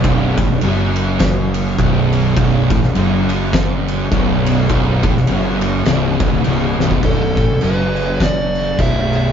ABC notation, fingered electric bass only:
X:1
M:4/4
L:1/16
Q:"Swing" 1/4=103
K:Bm
V:1 name="Fingered electric bass" clef=bass
B,,,,2 A,,, B,,,, F,,,8 B,,,,4 | B,,,,2 A,,, B,,,, F,,,8 B,,,,4 | B,,,,2 A,,, B,,,, F,,,4 =C,,,2 B,,,, D,,, C,,,2 B,,,,2 | B,,,,2 A,,, B,,,, F,,,8 B,,,,4 |]